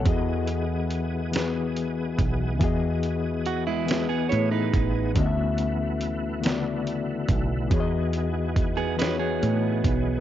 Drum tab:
HH |xxxxxx|xxxxxx|xxxxxx|xxxxxx|
SD |---o--|---o--|---o--|---o--|
BD |o----o|o----o|o----o|o-o--o|